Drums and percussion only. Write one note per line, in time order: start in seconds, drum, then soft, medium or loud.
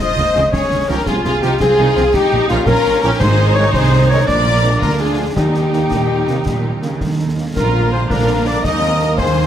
0.18 snare medium
0.36 snare medium
0.53 concert bass drum medium
0.53 snare medium
1.06 concert bass drum medium
1.06 snare medium
1.25 snare medium
1.43 snare medium
1.60 concert bass drum medium
1.60 snare medium
1.97 snare medium
2.14 concert bass drum medium
2.14 snare medium
2.49 snare medium
2.66 concert bass drum medium
2.66 snare medium
3.20 concert bass drum medium
3.20 snare medium
3.20 crash soft
3.74 concert bass drum medium
3.74 snare medium
4.28 concert bass drum medium
4.28 snare medium
4.47 snare medium
4.64 snare medium
4.82 concert bass drum medium
4.82 snare medium
5.37 concert bass drum medium
5.37 snare medium
5.54 snare medium
5.73 snare medium
5.91 concert bass drum medium
5.91 snare medium
6.28 snare medium
6.46 concert bass drum medium
6.46 snare medium
6.83 snare medium
7.01 concert bass drum medium
7.01 snare medium
7.56 concert bass drum medium
7.56 snare medium
7.56 crash soft
8.10 concert bass drum medium
8.10 snare medium
8.64 concert bass drum medium
8.64 snare medium
8.82 snare medium
9.00 snare medium
9.18 concert bass drum medium
9.18 snare medium